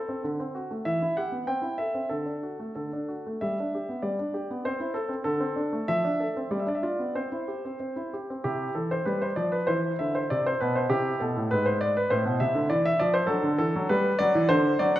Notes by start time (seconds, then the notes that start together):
Already playing: A4
0.09 C4
0.24 D3
0.40 C4
0.55 F#4
0.71 A3
0.85 E3 E5
1.02 E4
1.17 G4 F#5
1.32 B3
1.47 C4 G5
1.62 E4
1.78 A4 E5
1.94 C4
2.09 D3 A4
2.26 D4
2.43 F#4
2.59 A3
2.75 D3 A4
2.93 D4
3.08 F#4
3.27 A3
3.41 G3 E5
3.60 D4
3.75 G4
3.89 B3
4.02 G3 D5
4.19 D4
4.34 G4
4.51 B3
4.65 C4 C5
4.80 E4
4.94 A4
5.09 C4
5.24 D3 A4
5.40 C4
5.56 D4
5.73 A3
5.88 F3 E5
6.04 D4
6.20 A4
6.37 C4
6.51 G3 D5
6.59 E5
6.66 D4 D5
6.75 E5
6.83 F4 D5
6.99 B3
7.15 C4 C5
7.32 E4
7.48 G4
7.65 C4
7.80 C4
7.96 E4
8.13 G4
8.30 C4
8.44 C3 E4 G4
8.75 E3 A4
8.91 C5
9.05 G3 B4
9.22 C5
9.36 F3 D5
9.52 B4
9.67 E3 E4 C5
9.99 D3 E5
10.15 C5
10.30 C3 D5
10.46 C5
10.60 B2 B4
10.76 C5
10.90 C3 E4 G4
11.20 B2 A4
11.36 A2
11.51 G#2 B4
11.66 C5
11.81 D5
11.97 B4
12.10 A2 E4 C5
12.26 B2
12.40 C3 E5
12.55 D3
12.70 E3 D5
12.86 E5
13.00 F3 D5
13.14 C5
13.27 F#3 D4 A4
13.43 D3
13.58 E3 A4
13.76 F#3
13.89 G3 B4
14.19 F#3 D5
14.35 E3
14.49 D3 D4 C5
14.79 F#3 D5
14.96 F#5